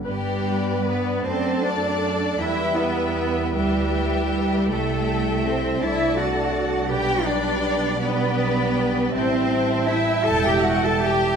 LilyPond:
<<
  \new Staff \with { instrumentName = "Violin section" } { \time 6/8 \key g \major \tempo 4. = 52 d''4. a''4. | g''4. g''4. | g''4. a''4. | g''4. g''4. |
a''2. | }
  \new Staff \with { instrumentName = "Viola section" } { \time 6/8 \key g \major << { b'4. d''4. | e''4. e''4. | e''4. d''4. | d''4. d''4. |
g''16 g''16 g''16 g''16 g''16 g''16 g''16 g''16 g''16 g''16 g''16 g''16 | } \\ { b'4. a'4. | b'4. b'4. | a'4. a'4. | b'4. b'4. |
e''2. | } >> }
  \new Staff \with { instrumentName = "Violin section" } { \time 6/8 \key g \major g'4 b'8 c''8 d''4 | e''8 b'4 g'4. | a'4 c''8 e''8 fis''4 | g''8 d''4 b'4. |
c''4 e''8 a''16 g''16 fis''16 a''16 g''8 | }
  \new Staff \with { instrumentName = "Cello section" } { \time 6/8 \key g \major g4 b8 c'8 d'4 | e'8 b4 g4. | a4 c'8 e'8 fis'4 | g'8 d'4 b4. |
c'4 e'8 a'16 g'16 fis'16 a'16 g'8 | }
  \new Staff \with { instrumentName = "French horn section" } { \time 6/8 \key g \major << { d'2. | e'2.~ | e'4. d'4.~ | d'2. |
e'2. | } \\ { b4. a4. | g2.~ | g4. a4. | g2.~ |
g2. | } >> }
  \new Staff \with { instrumentName = "Double bass section" } { \clef bass \time 6/8 \key g \major g,4. fis,4. | e,4. d,4. | c,4. c,4. | b,,2. |
a,,4. e,,4. | }
>>